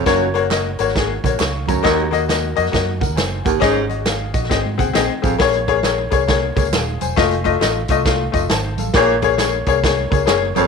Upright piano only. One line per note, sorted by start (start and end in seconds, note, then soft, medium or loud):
0.00 0.32 F4 medium
0.06 0.21 A#3 loud
0.06 0.21 F#4 loud
0.06 0.22 C#5 loud
0.34 0.43 A#3 loud
0.34 0.43 F#4 medium
0.34 0.44 C#5 loud
0.50 0.65 A#3 medium
0.50 0.66 F#4 medium
0.50 0.66 D#5 medium
0.79 0.87 A#3 medium
0.79 0.88 F#4 medium
0.79 0.88 C#5 medium
0.95 1.10 A#3 medium
0.95 1.11 F#4 medium
0.95 1.11 G#4 medium
1.24 1.32 A#3 medium
1.24 1.33 F#4 medium
1.24 1.33 C#5 medium
1.40 1.67 F5 medium
1.40 1.66 C#6 medium
1.68 2.11 C#5 medium
1.68 2.10 A#5 medium
1.83 1.99 A#3 loud
1.83 1.99 F#4 loud
1.83 1.99 D#5 loud
2.11 2.20 A#3 loud
2.11 2.21 F#4 medium
2.11 2.21 D#5 loud
2.29 2.44 A#3 medium
2.29 2.44 F#4 medium
2.29 2.45 D#5 medium
2.56 2.65 A#3 medium
2.56 2.65 F#4 medium
2.56 2.65 D#5 loud
2.72 2.88 A#3 medium
2.72 2.88 F#4 medium
2.72 2.89 D#5 medium
3.00 3.17 A#4 soft
3.00 3.16 F#5 medium
3.16 3.44 C5 soft
3.16 3.43 G#5 medium
3.45 3.88 A#4 soft
3.45 3.88 F#5 medium
3.60 3.76 C#4 loud
3.60 3.77 G#4 loud
3.60 3.77 D#5 loud
3.89 4.06 F#4 soft
3.89 4.05 D#5 medium
4.06 4.34 G#4 medium
4.06 4.33 F5 medium
4.34 4.77 F#4 medium
4.34 4.50 D#5 medium
4.49 4.65 C4 medium
4.49 4.66 G#4 medium
4.49 4.66 D#5 medium
4.78 4.87 C4 medium
4.78 4.87 G#4 medium
4.78 4.88 F#5 medium
4.93 5.10 C4 medium
4.93 5.10 G#4 medium
4.93 5.11 D#5 loud
5.22 5.32 C4 medium
5.22 5.32 G#4 medium
5.22 5.32 F5 medium
5.38 5.54 A#3 loud
5.38 5.55 G#4 medium
5.38 5.56 C#5 loud
5.68 5.77 A#3 medium
5.68 5.77 G#4 medium
5.68 5.77 C#5 loud
5.83 5.99 A#3 medium
5.83 6.00 G#4 medium
5.83 6.00 C#5 medium
6.10 6.20 A#3 medium
6.10 6.21 G#4 medium
6.10 6.22 C#5 loud
6.27 6.43 A#3 medium
6.27 6.44 G#4 medium
6.27 6.45 C#5 medium
6.56 6.65 A#3 medium
6.56 6.66 G#4 medium
6.56 6.66 C#5 medium
6.73 7.00 G#4 medium
6.73 7.00 F5 medium
7.01 7.44 C5 medium
7.01 7.44 G#5 medium
7.16 7.32 A3 loud
7.16 7.33 F4 loud
7.16 7.33 D#5 loud
7.44 7.54 A3 loud
7.44 7.54 F4 medium
7.44 7.55 D#5 loud
7.60 7.76 A3 medium
7.60 7.77 F4 medium
7.60 7.78 D#5 medium
7.90 7.99 A3 loud
7.90 7.99 F4 medium
7.90 8.00 D#5 loud
8.05 8.21 A3 medium
8.05 8.21 F4 medium
8.05 8.22 F5 medium
8.32 8.42 A3 medium
8.32 8.43 F4 medium
8.32 8.43 D#5 medium
8.50 8.78 C5 soft
8.50 8.78 A5 medium
8.79 9.21 A4 soft
8.79 9.21 F5 medium
8.95 9.10 A#3 loud
8.95 9.11 G#4 loud
8.95 9.12 C#5 loud
9.22 9.32 A#3 loud
9.22 9.32 G#4 medium
9.22 9.33 C#5 loud
9.37 9.54 A#3 medium
9.37 9.54 G#4 medium
9.37 9.55 C#5 medium
9.67 9.76 A#3 loud
9.67 9.76 G#4 medium
9.67 9.77 C#5 loud
9.83 9.99 A#3 medium
9.83 10.00 G#4 medium
9.83 10.00 C#5 medium
10.10 10.20 A#3 medium
10.10 10.21 G#4 medium
10.10 10.21 C#5 medium
10.26 10.42 A#3 medium
10.26 10.43 G#4 loud
10.26 10.44 C#5 loud
10.55 10.65 A#3 medium
10.55 10.65 G#4 medium
10.55 10.66 C#5 medium